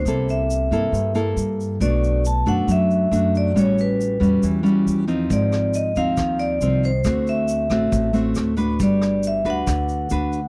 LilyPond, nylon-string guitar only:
\new Staff \with { instrumentName = "Nylon-string guitar" } { \time 4/4 \key g \major \tempo 4 = 137 << { <bes e' a'>4. <bes e' a'>4 <bes e' a'>4. | <a d' fis'>4 r8 <a d' fis'>4. <a d' fis'>4 | <g cis' fis'>4. <g cis' fis'>4 <g cis' fis'>4 <f c' ees'>8~ | <f c' ees'>4. <f c' ees'>4. <f c' ees'>8 r8 |
<a c' fis'>4. <a c' fis'>4 <a c' fis'>4 <d' fis' b'>8~ | <d' fis' b'>4. <d' fis' b'>4. <d' fis' b'>8 r8 | } \\ { c2 g,2 | b,2 fis2 | a,2 e2 | aes,2 ees2 |
d2 a,2 | g2 d2 | } >> }